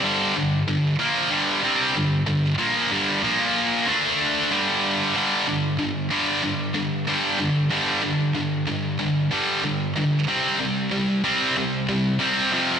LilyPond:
\new Staff \with { instrumentName = "Distorted electric guitar" } { \clef bass \time 4/4 \key g \minor \tempo 4 = 94 <g, d g>8 <g, d>8 <g, d>8 <bes, f bes>8 <g, d g>8 <c g c'>8 <g, d>8 <g, d>8 | <bes, f bes>8 <g, d g>8 <bes, f bes>4 <d a d'>4 <g, d g>4 | <g, d g>8 <g, d>8 <g, d>8 <g, d g>8 <g, d>8 <g, d>8 <g, d g>8 <g, d>8 | <g, d g>8 <g, d>8 <g, d>8 <g, d>8 <g, d>8 <g, d g>8 <g, d>8 <g, d>8 |
<c g c'>8 <c g>8 <c g>8 <c g c'>8 <c g>8 <c g>8 <c g c'>8 <f, c f>8 | }